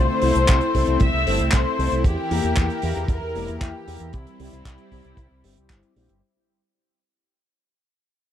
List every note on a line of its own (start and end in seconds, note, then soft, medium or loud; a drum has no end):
0.00 2.01 A3 medium
0.00 2.03 C4 medium
0.00 6.18 E4 medium
0.00 1.01 C5 loud
0.22 0.33 C2 medium
0.22 0.71 C4 loud
0.22 0.71 E4 medium
0.22 0.71 A4 medium
0.22 0.71 C5 loud
0.22 open hi-hat loud
0.35 0.46 C2 medium
0.35 closed hi-hat medium
0.48 0.59 C2 loud
0.48 kick loud
0.48 clap loud
0.48 closed hi-hat medium
0.61 closed hi-hat soft
0.74 0.85 C2 loud
0.74 1.04 C4 loud
0.74 1.04 E4 medium
0.74 1.04 A4 medium
0.74 1.04 C5 loud
0.74 kick medium
0.74 open hi-hat loud
0.87 0.98 C2 medium
0.87 closed hi-hat medium
1.00 1.11 C2 loud
1.00 1.49 E5 loud
1.00 kick loud
1.00 closed hi-hat medium
1.13 1.24 C2 medium
1.26 1.37 G1 medium
1.26 1.76 C4 medium
1.26 1.76 E4 medium
1.26 1.76 A4 medium
1.26 1.76 C5 loud
1.26 open hi-hat loud
1.39 1.50 C2 medium
1.39 closed hi-hat medium
1.52 1.64 C2 loud
1.52 2.05 C5 loud
1.52 kick loud
1.52 clap loud
1.52 closed hi-hat medium
1.79 1.90 C2 loud
1.79 2.03 C4 medium
1.79 2.03 E4 medium
1.79 2.03 A4 medium
1.79 2.03 C5 loud
1.79 open hi-hat loud
1.92 2.03 C2 medium
1.92 closed hi-hat medium
2.04 2.15 E2 loud
2.04 4.11 E3 medium
2.04 3.05 G4 loud
2.04 4.11 G4 medium
2.04 4.11 A#4 medium
2.04 kick loud
2.04 closed hi-hat loud
2.31 2.42 E2 medium
2.31 2.80 A#3 loud
2.31 2.80 E4 medium
2.31 2.80 G4 medium
2.31 2.80 A#4 loud
2.31 open hi-hat loud
2.43 2.55 E2 medium
2.43 closed hi-hat medium
2.57 2.68 E2 loud
2.57 kick loud
2.57 clap loud
2.57 closed hi-hat loud
2.70 closed hi-hat soft
2.82 2.94 E2 medium
2.82 3.12 A#3 loud
2.82 3.12 E4 medium
2.82 3.12 G4 medium
2.82 3.12 A#4 loud
2.82 open hi-hat loud
2.96 3.07 E2 medium
2.96 closed hi-hat medium
3.08 3.20 E2 loud
3.08 3.58 A#4 loud
3.08 kick loud
3.08 closed hi-hat medium
3.22 3.33 E2 medium
3.35 3.46 E1 medium
3.35 3.84 A#3 medium
3.35 3.84 E4 medium
3.35 3.84 G4 medium
3.35 3.84 A#4 medium
3.35 open hi-hat loud
3.48 3.59 E2 medium
3.48 closed hi-hat medium
3.61 3.72 E2 loud
3.61 4.14 G4 loud
3.61 kick loud
3.61 clap loud
3.61 closed hi-hat medium
3.87 3.98 E2 loud
3.87 4.12 A#3 medium
3.87 4.12 E4 medium
3.87 4.12 G4 medium
3.87 4.12 A#4 loud
3.87 open hi-hat loud
4.00 4.11 E2 medium
4.00 closed hi-hat medium
4.13 4.24 C2 loud
4.13 6.20 G3 medium
4.13 6.20 C4 medium
4.13 5.96 E4 loud
4.13 kick loud
4.13 closed hi-hat medium
4.27 closed hi-hat medium
4.40 4.50 C2 medium
4.40 4.89 G3 loud
4.40 4.89 C4 medium
4.40 4.89 E4 medium
4.40 4.89 G4 loud
4.40 open hi-hat loud
4.53 4.63 C2 medium
4.53 closed hi-hat medium
4.65 4.76 C2 loud
4.65 kick loud
4.65 clap loud
4.65 closed hi-hat medium
4.78 closed hi-hat medium
4.92 5.03 C2 loud
4.92 5.21 G3 loud
4.92 5.21 C4 medium
4.92 5.21 E4 medium
4.92 5.21 G4 loud
4.92 kick medium
4.92 open hi-hat loud
5.05 5.16 C2 medium
5.05 closed hi-hat medium
5.17 5.28 C2 loud
5.17 kick loud
5.17 closed hi-hat medium
5.31 5.42 C2 medium
5.44 5.55 G1 loud
5.44 5.93 G3 medium
5.44 5.93 C4 medium
5.44 5.93 E4 medium
5.44 5.93 G4 loud
5.44 open hi-hat loud
5.56 5.68 C2 medium
5.56 closed hi-hat medium
5.70 5.81 G1 loud
5.70 kick loud
5.70 clap loud
5.70 closed hi-hat medium
5.83 closed hi-hat medium
5.96 6.07 A#1 loud
5.96 6.21 G3 medium
5.96 6.21 C4 medium
5.96 6.21 E4 medium
5.96 6.21 G4 loud
5.96 open hi-hat medium
6.09 6.20 G1 medium
6.09 closed hi-hat medium